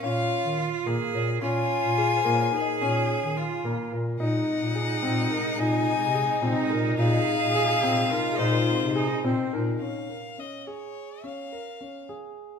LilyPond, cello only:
\new Staff \with { instrumentName = "Cello" } { \time 5/8 \key bes \minor \tempo 4 = 108 f'4. aes'4 | f'2 aes'8~ | aes'4 f'4 r8 | ees'2~ ees'8~ |
ees'4. ees'4 | aes'2 f'8~ | f'4 ees'8 c'4 | r2 r8 |
r2 r8 | }